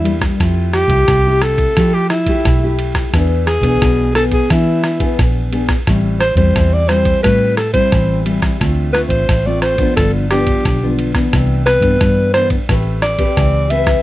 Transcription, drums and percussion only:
0.05 ride
0.21 kick, cross-stick, ride
0.40 kick, cross-stick, ride
0.73 cross-stick, ride
0.90 kick, ride
1.08 kick, cross-stick, ride
1.42 cross-stick, ride
1.58 kick, ride
1.77 kick, cross-stick, ride
2.10 cross-stick, ride
2.26 kick, ride
2.45 kick, cross-stick, ride
2.79 ride
2.95 kick, cross-stick, ride
3.14 kick, cross-stick, ride
3.47 cross-stick, ride
3.63 kick, ride
3.82 kick, cross-stick, ride
4.15 cross-stick, ride
4.31 kick, ride
4.50 kick, cross-stick, ride
4.84 cross-stick, ride
5.00 kick, ride
5.19 kick, cross-stick, ride
5.53 ride
5.69 kick, cross-stick, ride
5.87 kick, cross-stick, ride
6.21 cross-stick, ride
6.37 kick, ride
6.56 kick, cross-stick, ride
6.89 cross-stick, ride
7.05 kick, ride
7.24 kick, cross-stick, ride
7.57 cross-stick, ride
7.74 kick, ride
7.92 kick, cross-stick, ride
8.26 ride
8.42 kick, cross-stick, ride
8.61 kick, cross-stick, ride
8.95 cross-stick, ride
9.10 kick, ride
9.29 kick, cross-stick, ride
9.62 cross-stick, ride
9.78 kick, ride
9.97 kick, cross-stick, ride
10.31 cross-stick, ride
10.47 kick, ride
10.65 kick, cross-stick, ride
10.99 ride
11.15 kick, cross-stick, ride
11.33 kick, cross-stick, ride
11.67 cross-stick, ride
11.82 kick, ride
12.01 kick, cross-stick, ride
12.34 cross-stick, ride
12.50 kick, ride
12.69 kick, cross-stick, ride
13.02 cross-stick, ride
13.19 kick, ride
13.37 kick, cross-stick, ride
13.70 ride
13.87 kick, cross-stick, ride

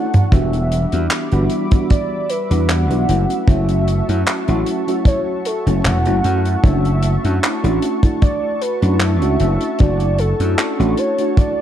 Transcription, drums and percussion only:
0.14 closed hi-hat, mid tom
0.32 kick, closed hi-hat
0.53 closed hi-hat
0.72 closed hi-hat
0.92 closed hi-hat
1.11 clap, closed hi-hat
1.32 closed hi-hat
1.50 closed hi-hat
1.71 kick, closed hi-hat
1.90 kick, closed hi-hat
2.30 closed hi-hat
2.51 closed hi-hat
2.69 clap, closed hi-hat
2.91 closed hi-hat
3.09 closed hi-hat
3.30 closed hi-hat
3.48 kick, closed hi-hat
3.69 closed hi-hat
3.88 closed hi-hat
4.09 closed hi-hat
4.26 clap, closed hi-hat
4.48 closed hi-hat
4.66 closed hi-hat
4.88 closed hi-hat
5.05 kick, closed hi-hat
5.45 closed hi-hat
5.67 closed hi-hat
5.85 clap, closed hi-hat
6.05 closed hi-hat
6.24 closed hi-hat
6.45 closed hi-hat
6.64 kick, closed hi-hat
6.85 closed hi-hat
7.03 closed hi-hat
7.25 closed hi-hat
7.44 clap, closed hi-hat
7.64 closed hi-hat
7.82 closed hi-hat
8.03 kick, closed hi-hat
8.22 kick, closed hi-hat
8.62 closed hi-hat
8.82 closed hi-hat
9.00 clap, closed hi-hat
9.22 closed hi-hat
9.40 closed hi-hat
9.61 closed hi-hat
9.79 kick, closed hi-hat
10.00 closed hi-hat
10.19 closed hi-hat
10.40 closed hi-hat
10.58 clap, closed hi-hat
10.80 closed hi-hat
10.97 closed hi-hat
11.18 closed hi-hat
11.37 kick, closed hi-hat

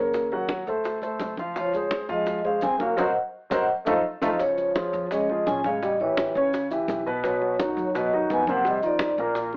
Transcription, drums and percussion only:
0.14 high bongo, high conga, maracas
0.32 high bongo, high conga
0.49 high bongo, high conga, maracas
0.67 high conga, maracas
0.84 high bongo, high conga, maracas
1.02 high bongo, high conga, maracas
1.20 high bongo, low bongo, high conga, maracas
1.37 high bongo, high conga, maracas
1.56 high bongo, high conga, maracas
1.73 high bongo, high conga, maracas
1.91 high bongo, high conga, maracas
2.09 high conga, maracas
2.26 high bongo, high conga, maracas
2.45 high bongo, high conga
2.61 high bongo, low bongo, high conga, maracas
2.79 high bongo, high conga, maracas
2.98 low bongo, high conga, maracas
3.51 low bongo, high conga, maracas
3.86 low bongo, high conga, maracas
4.22 low bongo, high conga, maracas
4.40 high bongo, high conga, maracas
4.58 high bongo, high conga, maracas
4.75 high bongo, high conga, maracas
4.93 high conga, maracas
5.11 high bongo, high conga, maracas
5.29 high bongo, high conga
5.47 high bongo, low bongo, high conga, maracas
5.64 high bongo, high conga, maracas
5.82 high bongo, high conga, maracas
6.00 high bongo, high conga
6.17 high bongo, high conga, maracas
6.35 high conga, maracas
6.53 high bongo, high conga, maracas
6.70 high bongo, high conga, maracas
6.88 high bongo, low bongo, high conga, maracas
7.07 high bongo, maracas
7.24 high bongo, high conga, maracas
7.42 high bongo, high conga
7.59 high bongo, high conga, maracas
7.77 high conga, maracas
7.95 high bongo, high conga, maracas
8.13 high bongo, high conga
8.30 high bongo, low bongo, high conga, maracas
8.47 high bongo, high conga, maracas
8.65 high bongo, high conga, maracas
8.83 high bongo, high conga, maracas
9.00 high bongo, high conga, maracas
9.18 high conga, maracas
9.35 high bongo, high conga, maracas
9.53 high bongo, high conga

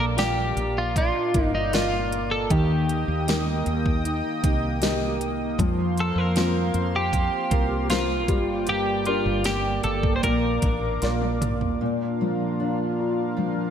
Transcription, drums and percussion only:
0.18 snare, closed hi-hat
0.57 closed hi-hat
0.96 kick, closed hi-hat
1.34 kick, closed hi-hat
1.73 snare, closed hi-hat
2.12 closed hi-hat
2.50 kick, closed hi-hat
2.89 closed hi-hat
3.28 snare, closed hi-hat
3.66 closed hi-hat
3.86 kick
4.05 closed hi-hat
4.44 kick, closed hi-hat
4.82 snare, closed hi-hat
5.21 closed hi-hat
5.59 kick, closed hi-hat
5.98 closed hi-hat
6.36 snare, closed hi-hat
6.74 closed hi-hat
7.13 kick, closed hi-hat
7.51 kick, closed hi-hat
7.90 snare, closed hi-hat
8.28 kick, closed hi-hat
8.67 closed hi-hat
9.05 closed hi-hat
9.44 snare, closed hi-hat
9.84 closed hi-hat
10.03 kick
10.23 kick, closed hi-hat
10.62 kick, closed hi-hat
11.02 snare, closed hi-hat
11.22 high tom
11.42 closed hi-hat, mid tom
11.61 floor tom

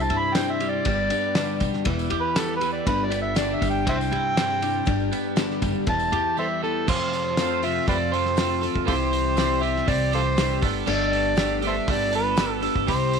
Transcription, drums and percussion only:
0.10 ride
0.35 snare, ride, tambourine
0.48 tambourine
0.60 ride, tambourine
0.85 kick, ride, tambourine
1.10 ride, tambourine
1.35 snare, ride, tambourine
1.60 kick, ride, tambourine
1.73 snare
1.85 kick, ride
1.99 tambourine
2.10 ride
2.36 snare, ride, tambourine
2.50 tambourine
2.61 ride, tambourine
2.87 kick, ride, tambourine
3.12 ride, tambourine
3.36 snare, ride, tambourine
3.62 kick, ride, tambourine
3.87 kick, ride
4.01 tambourine
4.12 ride
4.37 snare, ride, tambourine
4.50 tambourine
4.62 ride, tambourine
4.87 kick, ride
4.99 tambourine
5.12 ride, tambourine
5.37 snare, ride, tambourine
5.50 snare, tambourine
5.62 kick, ride, tambourine
5.74 tambourine
5.87 kick, ride
6.00 tambourine
6.12 ride, tambourine
6.88 kick, crash
7.13 open hi-hat
7.37 snare, open hi-hat, tambourine
7.63 open hi-hat
7.88 kick, open hi-hat
8.14 open hi-hat
8.26 snare
8.37 snare, open hi-hat, tambourine
8.63 open hi-hat
8.76 kick
8.88 kick, open hi-hat
9.13 open hi-hat
9.37 snare, open hi-hat, tambourine
9.63 open hi-hat
9.76 snare
9.88 kick, open hi-hat
10.13 open hi-hat
10.38 snare, open hi-hat, tambourine
10.62 kick, open hi-hat
10.87 crash
11.13 open hi-hat
11.37 snare, open hi-hat, tambourine
11.62 open hi-hat
11.88 kick, open hi-hat
12.13 open hi-hat
12.37 snare, open hi-hat, tambourine
12.63 open hi-hat
12.76 kick
12.88 kick, open hi-hat
13.13 open hi-hat

